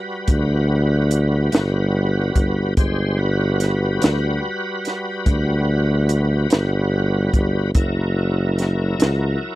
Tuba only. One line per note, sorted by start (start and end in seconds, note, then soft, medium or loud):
0.28 1.49 D2 medium
1.53 2.32 G1 loud
2.35 2.74 G1 medium
2.77 3.98 G1 medium
4.02 4.40 D2 medium
5.26 6.47 D2 medium
6.50 7.29 G1 medium
7.34 7.72 G1 medium
7.75 8.95 F#1 medium
8.99 9.37 C#2 medium